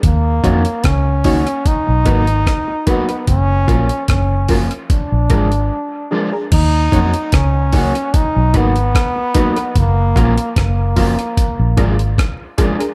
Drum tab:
CC |----------------|----------------|x---------------|----------------|
HH |x-xxx-oxx-xxx-xx|x-xxx-oxx-xx----|x-xxx-oxx-xxx-xx|x-xxx-oxx-xxx-xx|
SD |----r-------r---|----r-----------|----r-------r---|----r-------r---|
BD |o-o-o-o-o-o-o-o-|o-o-o-o-o-o-----|o-o-o-o-o-o-o-o-|o-o-o-o-o-o-o-o-|